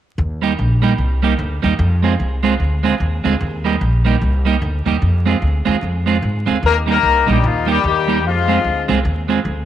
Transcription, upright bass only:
0.18 0.52 D#2 loud
0.59 0.93 A#1 medium
0.98 1.33 C2 medium
1.39 1.60 D2 loud
1.64 1.77 D#2 medium
1.79 2.13 F2 loud
2.20 2.54 C2 medium
2.60 2.94 D2 medium
3.00 3.21 D#2 loud
3.25 3.38 D2 medium
3.41 3.75 D#2 loud
3.81 4.15 A#1 medium
4.21 4.55 C2 medium
4.62 4.82 D2 loud
4.86 4.99 D#2 medium
5.02 5.36 F2 loud
5.42 5.63 D2 loud
5.67 5.80 D#2 medium
5.82 6.16 F2 medium
6.22 6.43 G#2 loud
6.47 6.60 D2 medium
6.63 6.97 D#2 loud
7.03 7.24 C2 medium
7.28 7.41 A#1 medium
7.44 7.77 D#2 loud
7.84 8.25 D#2 medium
8.25 8.58 F2 loud
8.64 8.85 D2 medium
8.89 9.02 C2 medium
9.05 9.39 D#2 loud
9.45 9.65 D2 loud

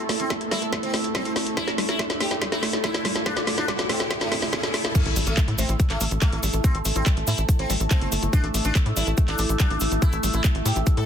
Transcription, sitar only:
0.20 0.33 C4 loud
0.51 0.65 E4 medium
0.83 0.96 C4 loud
1.15 1.32 C4 medium
1.57 1.70 E4 loud
1.89 2.02 E4 medium
2.20 2.34 G4 medium
2.52 2.65 E4 medium
2.84 3.01 E4 medium
3.26 3.39 D4 loud
3.58 3.71 D4 loud
3.89 4.03 C4 loud
4.21 4.34 A3 loud
4.53 4.70 A3 loud
4.95 5.08 A3 loud
5.27 5.40 A3 medium
5.58 5.72 C4 medium
5.90 6.03 A3 medium
6.22 6.39 A3 loud
6.64 6.77 C4 loud
6.96 7.09 C4 medium
7.27 7.41 E4 medium
7.59 7.72 C4 medium
7.91 8.08 C4 medium
8.33 8.46 D4 loud
8.65 8.78 D4 loud
8.97 9.10 E4 medium
9.28 9.41 D4 loud
9.60 9.77 D4 medium
10.02 10.15 E4 loud
10.34 10.47 E4 loud
10.66 10.79 G4 loud
10.97 11.06 A4 medium

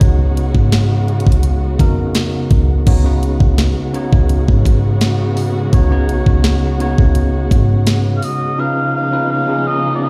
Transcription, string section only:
0.00 2.84 C#3 medium
0.00 2.84 G#3 medium
0.00 2.83 B3 medium
0.00 2.83 F#4 medium
2.86 8.54 C#3 medium
2.86 8.55 G#3 medium
2.86 8.54 B3 medium
2.86 8.55 F#4 medium
8.58 10.09 C#3 medium
8.58 10.09 F3 medium
8.58 10.09 B3 medium
8.58 10.09 D#4 medium

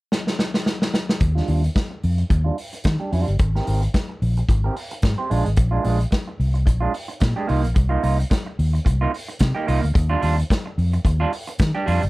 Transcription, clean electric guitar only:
1.20 muted clean electric guitar stroke soft
1.35 1.46 G3 medium
1.35 1.47 D4 medium
1.35 1.48 F4 medium
1.48 1.61 G3 medium
1.48 1.61 D4 medium
1.48 1.62 F4 medium
1.64 muted clean electric guitar stroke soft
1.75 muted clean electric guitar stroke soft
1.90 muted clean electric guitar stroke soft
2.18 muted clean electric guitar stroke soft
2.30 muted clean electric guitar stroke soft
2.44 2.55 G3 medium
2.44 2.56 D4 medium
2.44 2.57 F4 medium
2.56 muted clean electric guitar stroke soft
2.73 muted clean electric guitar stroke soft
2.84 muted clean electric guitar stroke soft
3.00 3.11 G3 soft
3.00 3.11 D4 medium
3.00 3.10 G4 medium
3.12 3.33 G3 medium
3.12 3.27 D4 medium
3.12 3.25 F4 medium
3.27 muted clean electric guitar stroke soft
3.39 muted clean electric guitar stroke soft
3.55 3.65 C4 medium
3.55 3.67 G4 medium
3.55 3.68 A#4 medium
3.67 3.80 C4 medium
3.67 3.81 G4 medium
3.67 3.81 A#4 medium
3.82 muted clean electric guitar stroke soft
3.94 muted clean electric guitar stroke soft
4.09 muted clean electric guitar stroke soft
4.38 muted clean electric guitar stroke soft
4.50 muted clean electric guitar stroke soft
4.64 4.75 C4 medium
4.64 4.75 G4 medium
4.64 4.76 A#4 medium
4.76 muted clean electric guitar stroke soft
4.91 muted clean electric guitar stroke soft
5.03 muted clean electric guitar stroke soft
5.18 5.30 C4 soft
5.18 5.29 G4 medium
5.18 5.29 C5 medium
5.30 5.47 G#3 medium
5.30 5.45 D4 medium
5.30 5.44 F4 medium
5.45 muted clean electric guitar stroke soft
5.57 muted clean electric guitar stroke soft
5.71 5.82 G#3 medium
5.71 5.83 D4 medium
5.71 5.84 F4 medium
5.84 5.98 G#3 medium
5.84 5.98 D4 medium
5.84 5.98 F4 medium
5.99 muted clean electric guitar stroke soft
6.11 muted clean electric guitar stroke soft
6.28 muted clean electric guitar stroke soft
6.54 muted clean electric guitar stroke soft
6.66 muted clean electric guitar stroke soft
6.81 6.92 G#3 medium
6.81 6.93 D4 medium
6.81 6.93 F4 medium
7.08 muted clean electric guitar stroke medium
7.20 muted clean electric guitar stroke soft
7.36 7.47 G#3 soft
7.36 7.48 D4 medium
7.36 7.47 G4 medium
7.47 7.65 A#3 medium
7.47 7.63 D#4 medium
7.47 7.61 F4 medium
7.62 muted clean electric guitar stroke soft
7.74 muted clean electric guitar stroke soft
7.89 8.02 A#3 medium
7.89 8.03 D#4 medium
7.89 8.03 F4 medium
8.03 8.17 A#3 soft
8.03 8.17 D#4 medium
8.03 8.17 F4 medium
8.18 muted clean electric guitar stroke soft
8.30 muted clean electric guitar stroke soft
8.46 muted clean electric guitar stroke soft
8.73 muted clean electric guitar stroke soft
8.85 muted clean electric guitar stroke soft
9.01 9.11 A#3 medium
9.01 9.12 D#4 medium
9.01 9.12 F4 medium
9.28 muted clean electric guitar stroke soft
9.40 muted clean electric guitar stroke soft
9.55 9.65 A#3 medium
9.55 9.66 D#4 medium
9.55 9.66 G4 medium
9.67 9.84 A#3 medium
9.67 9.81 D#4 medium
9.67 9.81 F4 medium
9.82 muted clean electric guitar stroke soft
9.94 muted clean electric guitar stroke soft
10.10 10.20 G3 medium
10.10 10.21 D4 medium
10.10 10.21 F4 medium
10.21 10.35 G3 medium
10.21 10.36 D4 medium
10.21 10.35 F4 medium
10.37 muted clean electric guitar stroke soft
10.50 muted clean electric guitar stroke soft
10.66 muted clean electric guitar stroke soft
10.93 muted clean electric guitar stroke soft
11.05 muted clean electric guitar stroke soft
11.20 11.31 G3 medium
11.20 11.31 D4 medium
11.20 11.32 F4 medium
11.47 muted clean electric guitar stroke soft
11.60 muted clean electric guitar stroke soft
11.75 11.85 G3 soft
11.75 11.85 D4 medium
11.75 11.85 G4 medium
11.86 12.03 G3 medium
11.86 12.02 D4 medium
11.86 12.01 F4 medium
12.02 muted clean electric guitar stroke soft

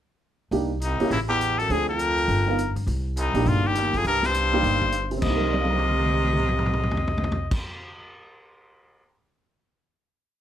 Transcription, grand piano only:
0.51 0.68 A#3 medium
0.51 0.69 D4 medium
0.51 0.69 D#4 soft
0.51 0.69 G4 medium
1.00 1.10 A#3 medium
1.00 1.10 C#4 medium
1.00 1.10 E4 medium
1.00 1.11 G4 medium
1.70 1.87 C4 soft
1.70 1.87 D4 soft
1.70 1.87 F4 soft
1.70 1.87 G#4 medium
2.47 2.57 B3 medium
2.47 2.57 D#4 medium
2.47 2.58 F4 medium
2.47 2.58 A#4 medium
3.34 3.73 A#3 medium
3.34 3.73 D4 medium
3.34 3.73 D#4 medium
3.34 3.74 G4 medium
4.52 4.91 A#3 medium
4.52 4.91 D4 medium
4.52 4.91 D#4 medium
4.52 4.91 G4 medium
5.11 7.51 C3 medium
5.17 7.54 C4 medium
5.24 7.57 A#3 medium
5.30 7.60 D#4 medium
5.37 7.64 A#4 medium
5.53 7.53 D5 soft
5.61 7.57 F5 soft
5.69 7.61 A#5 soft
5.78 7.66 D6 soft
5.88 7.71 F6 soft
5.99 7.76 A#6 soft
6.10 7.82 D7 soft

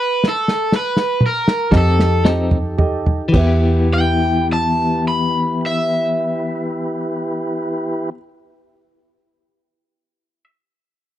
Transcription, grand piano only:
1.71 2.11 G4 medium
1.71 2.11 A4 medium
1.71 2.12 D#5 medium
2.25 2.65 G4 medium
2.25 2.65 A4 soft
2.25 2.66 D#5 medium
2.78 3.20 G4 medium
2.78 3.20 A4 medium
2.78 3.20 D#5 medium
3.32 8.10 G4 medium
3.32 8.13 B4 medium
3.37 8.15 E5 medium

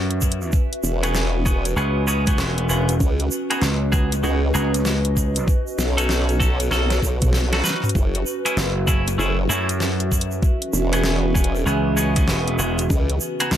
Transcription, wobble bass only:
0.83 1.75 E1 medium
3.00 3.29 C#2 medium
4.24 4.53 C#2 loud
5.78 6.69 B1 medium
6.71 7.01 B1 loud
7.02 7.62 B1 medium
7.95 8.24 F#1 loud
9.18 9.48 F#1 loud
10.73 11.64 E1 medium
12.90 13.19 C#2 medium

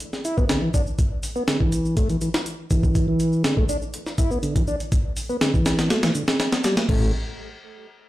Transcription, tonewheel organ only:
0.25 0.37 E4 medium
0.37 0.45 B3 loud
0.49 0.61 D3 medium
0.62 0.70 E3 loud
0.74 0.82 D4 medium
1.36 1.43 B3 loud
1.48 1.59 D3 medium
1.60 1.96 E3 medium
1.97 2.08 A3 medium
2.10 2.17 E3 medium
2.21 2.30 E3 medium
2.71 3.07 E3 medium
3.08 3.43 E3 loud
3.44 3.56 D3 medium
3.57 3.65 A3 medium
3.69 3.77 D4 medium
4.18 4.30 E4 medium
4.31 4.39 B3 loud
4.43 4.54 D3 medium
4.56 4.63 E3 loud
4.68 4.76 D4 medium
5.29 5.37 B3 loud
5.41 5.53 D3 medium
5.54 5.89 E3 medium
5.90 6.02 A3 medium
6.03 6.11 E3 medium
6.15 6.23 D3 medium
6.64 6.76 G3 loud
6.89 7.12 A3 medium

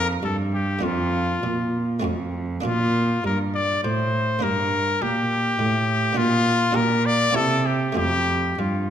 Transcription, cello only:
0.00 0.22 F2 medium
0.23 0.82 G2 medium
0.84 1.42 F2 medium
1.43 2.05 A#2 medium
2.04 2.65 F2 medium
2.65 3.24 A#2 medium
3.25 3.83 G2 medium
3.85 4.43 A2 medium
4.44 5.01 G2 medium
5.03 5.59 A#2 medium
5.60 6.17 A2 medium
6.18 6.75 A#2 medium
6.76 7.34 A#2 medium
7.36 7.96 C3 medium
7.97 8.58 F2 medium
8.59 8.90 G2 medium

